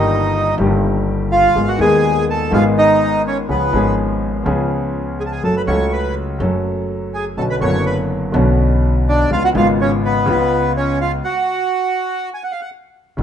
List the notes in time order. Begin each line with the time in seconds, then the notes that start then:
Already playing: G1 G2 D#3 G3 A#3 D#4 G4 D#5
0.57 G1 G2 D#3 G3 A#3 G4
1.32 F4 F5
1.55 G#1 G#2 D#3 G#3 B3 G#4
1.68 F#4 F#5
1.78 D#1 D#2 D#3 G#3 B3 G#4 G#5
1.82 G#4
2.30 A4 A5
2.50 G#1 G#2 D#3 G#3 B3 F4 G#4 F5
2.78 D#4 D#5
3.27 C#4 C#5
3.49 C#2 C#3 F3 B3 C#4 G#4 B4
3.71 G#1 G#2 F3 B3 C#4
3.75 G#4
4.44 C#2 C#3 F3 B3 C#4 G#4
5.20 G#4 G#5
5.26 A5
5.32 G#4 G#5
5.43 F#1 F#2 F#3 A3 C#4 A4 A5
5.57 B4 B5
5.66 C#2 C#3 F#3 A3 C#4 C#5 C#6
5.70 A4
5.93 B4 B5
6.39 F#1 F#2 F#3 A3 C#4
6.43 A4
7.14 G#4 G#5
7.37 B1 B2 D3 B3 C#4 F#4 A4 A5
7.50 B4 B5
7.60 F#1 F#2 D3 B3 C#4 C#5 C#6
7.64 F#4
7.86 B4 B5
8.32 B1 B2 D3 B3 C#4
8.36 F#4
9.09 D4 D5
9.30 C#2 C#3 G#3 B3 F4 F5
9.45 F#4 F#5
9.53 G#1 G#2 C#3 G#3 B3
9.57 F4 F5
9.81 C#4 C#5
10.05 B3 B4
10.26 C#2 C#3 G#3 B3
10.30 F4
10.77 C#4 C#5
11.01 F4 F5
11.24 F#4 F#5
12.34 G#5
12.43 F#5
12.52 F5
12.61 F#5
13.17 A1 A2 C#3 E3